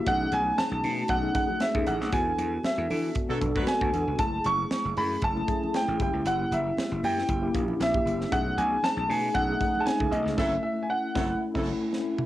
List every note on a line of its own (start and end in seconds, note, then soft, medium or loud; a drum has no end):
0.06 0.25 B1 loud
0.06 0.61 A3 medium
0.06 0.61 C#4 medium
0.06 0.61 D#4 medium
0.06 0.61 G#4 medium
0.06 0.31 F#5 loud
0.06 kick loud
0.06 closed hi-hat loud
0.06 muted conga soft
0.22 muted conga soft
0.32 0.51 B1 medium
0.32 0.59 G#5 loud
0.32 closed hi-hat medium
0.32 high conga medium
0.58 1.11 A5 loud
0.58 snare loud
0.58 closed hi-hat medium
0.58 muted conga soft
0.58 high conga medium
0.72 0.80 B1 loud
0.83 1.02 B2 medium
0.83 1.11 A3 medium
0.83 1.11 C#4 medium
0.83 1.11 D#4 medium
0.83 1.11 F#4 medium
0.83 open hi-hat medium
0.83 high conga medium
0.83 low conga medium
1.08 1.28 B1 loud
1.08 1.34 F#5 loud
1.08 kick loud
1.08 closed hi-hat medium
1.22 1.31 A3 medium
1.22 1.31 C#4 medium
1.22 1.31 D#4 medium
1.22 1.32 G#4 medium
1.22 muted conga soft
1.34 1.62 A3 medium
1.34 1.62 C#4 medium
1.34 1.62 D#4 medium
1.34 1.62 G#4 medium
1.34 1.62 F#5 medium
1.34 kick loud
1.34 closed hi-hat medium
1.34 high conga medium
1.50 high conga medium
1.60 1.88 E5 medium
1.60 snare loud
1.60 closed hi-hat medium
1.60 high conga medium
1.74 1.84 D#2 loud
1.74 2.02 A3 medium
1.74 2.02 C#4 medium
1.74 2.02 D#4 medium
1.74 2.02 G#4 medium
1.74 kick loud
1.74 muted conga soft
1.87 2.01 A1 loud
1.87 2.14 F#5 medium
1.87 closed hi-hat medium
1.87 low conga soft
2.01 2.10 B1 loud
2.01 snare soft
2.11 2.32 E2 loud
2.11 2.67 B3 medium
2.11 2.67 D4 medium
2.11 2.67 F#4 medium
2.11 2.20 G#4 medium
2.11 2.61 G#5 loud
2.11 kick loud
2.11 closed hi-hat loud
2.11 muted conga soft
2.19 2.70 A4 medium
2.28 muted conga soft
2.38 2.57 E2 medium
2.38 closed hi-hat medium
2.38 high conga medium
2.63 3.12 E5 medium
2.63 snare loud
2.63 closed hi-hat medium
2.63 muted conga soft
2.63 high conga medium
2.78 2.87 E2 loud
2.78 muted conga soft
2.89 3.09 E3 loud
2.89 3.17 B3 medium
2.89 3.17 D4 medium
2.89 3.17 F#4 medium
2.89 3.17 A4 medium
2.89 open hi-hat medium
2.89 high conga medium
2.89 low conga medium
3.15 kick loud
3.15 closed hi-hat medium
3.28 3.38 B2 medium
3.28 3.37 F#3 loud
3.28 3.37 B3 medium
3.28 3.38 D4 medium
3.28 3.37 D4 loud
3.28 3.38 F#4 medium
3.28 3.37 A4 loud
3.28 3.38 A4 loud
3.28 muted conga soft
3.40 3.52 B1 medium
3.40 3.68 B3 medium
3.40 3.68 D4 medium
3.40 3.69 F#4 medium
3.40 3.69 A4 loud
3.40 kick loud
3.40 closed hi-hat medium
3.40 high conga medium
3.55 3.64 D2 medium
3.55 3.72 F#3 loud
3.55 3.72 D4 loud
3.55 3.72 B4 loud
3.55 kick medium
3.55 high conga medium
3.67 4.21 G#5 medium
3.67 snare loud
3.67 closed hi-hat medium
3.67 muted conga soft
3.67 high conga medium
3.81 3.90 D2 loud
3.81 4.08 B3 medium
3.81 4.08 D4 medium
3.81 4.09 F#4 medium
3.81 4.09 A4 medium
3.81 kick loud
3.81 muted conga soft
3.93 4.03 E2 medium
3.93 closed hi-hat medium
3.93 low conga medium
4.07 4.16 C#2 medium
4.18 4.38 F#1 loud
4.18 4.73 A3 medium
4.18 4.73 C#4 medium
4.18 4.73 E4 medium
4.18 4.74 G#4 medium
4.18 4.46 A5 medium
4.18 kick loud
4.18 closed hi-hat medium
4.18 muted conga soft
4.44 4.64 F#1 loud
4.44 4.99 C#6 loud
4.44 closed hi-hat medium
4.44 high conga medium
4.71 snare loud
4.71 closed hi-hat medium
4.71 high conga medium
4.85 4.94 F#1 medium
4.85 muted conga soft
4.96 5.16 F#2 medium
4.96 5.23 A3 medium
4.96 5.24 C#4 medium
4.96 5.24 E4 medium
4.96 5.24 G#4 medium
4.96 5.24 B5 loud
4.96 open hi-hat medium
4.96 high conga medium
4.96 low conga medium
5.22 5.41 F#1 loud
5.22 5.76 A5 loud
5.22 kick loud
5.22 closed hi-hat medium
5.22 muted conga soft
5.35 5.44 A3 medium
5.35 5.44 C#4 medium
5.35 5.45 E4 medium
5.35 5.45 G#4 medium
5.35 muted conga soft
5.47 5.75 A3 medium
5.47 5.75 C#4 medium
5.47 5.75 E4 medium
5.47 5.76 G#4 medium
5.47 kick loud
5.47 closed hi-hat medium
5.47 high conga medium
5.63 high conga medium
5.74 5.99 G5 medium
5.74 snare loud
5.74 closed hi-hat loud
5.74 high conga medium
5.88 5.96 A1 medium
5.88 6.00 A3 medium
5.88 5.99 C#4 medium
5.88 5.99 E4 medium
5.88 6.00 G#4 medium
5.88 muted conga soft
5.99 6.10 F#1 loud
5.99 6.06 G3 medium
5.99 6.83 C#4 medium
5.99 6.83 E4 medium
5.99 6.83 G4 medium
5.99 6.25 G5 medium
5.99 kick loud
5.99 closed hi-hat medium
5.99 low conga soft
6.06 6.86 A#3 medium
6.13 6.22 C#2 medium
6.25 6.44 F#1 loud
6.25 6.53 F#5 medium
6.25 closed hi-hat loud
6.25 muted conga soft
6.51 6.70 F#1 medium
6.51 7.05 E5 medium
6.51 closed hi-hat medium
6.51 high conga medium
6.77 snare loud
6.77 closed hi-hat medium
6.77 muted conga soft
6.77 high conga medium
6.92 7.00 F#1 loud
7.03 7.22 F#2 loud
7.03 7.30 A#3 medium
7.03 7.30 C#4 medium
7.03 7.31 E4 medium
7.03 7.31 G4 medium
7.03 7.52 G5 medium
7.03 open hi-hat medium
7.03 high conga medium
7.03 low conga medium
7.19 snare soft
7.28 7.47 F#1 loud
7.28 kick loud
7.28 closed hi-hat medium
7.28 muted conga soft
7.42 7.51 A#3 medium
7.42 7.50 C#4 medium
7.42 7.51 E4 medium
7.42 7.51 G4 medium
7.54 7.73 A#1 medium
7.54 7.81 A#3 medium
7.54 7.82 C#4 medium
7.54 7.82 E4 medium
7.54 7.82 G4 medium
7.54 kick loud
7.54 closed hi-hat medium
7.54 high conga medium
7.68 high conga medium
7.80 7.99 A#1 medium
7.80 8.34 E5 loud
7.80 snare loud
7.80 closed hi-hat loud
7.80 muted conga soft
7.80 high conga medium
7.94 8.21 A#3 medium
7.94 8.21 C#4 medium
7.94 8.21 E4 medium
7.94 8.22 G4 medium
7.94 kick loud
8.06 8.24 F#1 medium
8.06 closed hi-hat medium
8.06 low conga medium
8.21 snare soft
8.31 8.51 B1 loud
8.31 8.86 A3 medium
8.31 8.86 C#4 medium
8.31 8.86 D#4 medium
8.31 8.86 G#4 loud
8.31 8.59 F#5 loud
8.31 kick loud
8.31 closed hi-hat medium
8.31 muted conga soft
8.47 muted conga soft
8.57 8.76 B1 medium
8.57 8.84 G#5 loud
8.57 closed hi-hat medium
8.57 high conga medium
8.83 9.10 A5 loud
8.83 snare loud
8.83 closed hi-hat medium
8.83 muted conga soft
8.83 high conga medium
8.97 9.06 B1 medium
8.97 muted conga soft
9.08 9.28 B2 medium
9.08 9.36 A3 medium
9.08 9.36 C#4 medium
9.08 9.36 D#4 medium
9.08 9.36 G#4 medium
9.08 9.36 G#5 loud
9.08 open hi-hat medium
9.08 high conga medium
9.08 low conga medium
9.35 9.54 B1 loud
9.35 9.82 F#5 loud
9.35 kick loud
9.35 closed hi-hat medium
9.48 9.56 A3 medium
9.48 9.57 C#4 medium
9.48 9.57 D#4 medium
9.48 9.57 G#4 medium
9.60 9.87 A3 medium
9.60 9.88 C#4 medium
9.60 9.88 D#4 medium
9.60 9.88 G#4 medium
9.60 kick medium
9.60 closed hi-hat medium
9.60 high conga medium
9.75 high conga medium
9.80 9.86 A5 medium
9.86 10.13 G#5 medium
9.86 snare loud
9.86 closed hi-hat medium
9.86 muted conga soft
9.86 high conga soft
9.99 10.09 C#2 loud
9.99 10.27 A3 medium
9.99 10.27 C#4 medium
9.99 10.27 D#4 medium
9.99 10.27 G#4 medium
9.99 kick medium
9.99 muted conga soft
10.11 10.22 B1 medium
10.11 10.36 D#5 medium
10.11 closed hi-hat medium
10.11 low conga soft
10.26 10.34 C#2 loud
10.26 snare soft
10.37 10.56 F#1 loud
10.37 10.52 F#3 loud
10.37 10.55 A3 loud
10.37 10.55 C#4 loud
10.37 10.56 E4 loud
10.37 10.52 E4 loud
10.37 10.52 A4 loud
10.37 10.61 E5 loud
10.37 kick loud
10.37 snare loud
10.37 crash medium
10.63 10.83 E5 medium
10.83 10.89 G#5 medium
10.90 11.38 F#5 medium
11.14 11.33 F#1 loud
11.14 11.30 F#3 loud
11.14 11.33 A3 loud
11.14 11.33 C#4 loud
11.14 11.33 E4 loud
11.14 11.30 E4 loud
11.14 11.30 A4 medium
11.14 kick loud
11.14 snare loud
11.54 11.72 F#1 loud
11.54 11.69 F#3 loud
11.54 11.72 A3 medium
11.54 11.72 C#4 loud
11.54 11.72 E4 loud
11.54 11.69 E4 loud
11.54 11.69 A4 loud
11.54 kick loud
11.54 snare loud
11.54 crash loud
11.93 snare medium
12.18 mid tom medium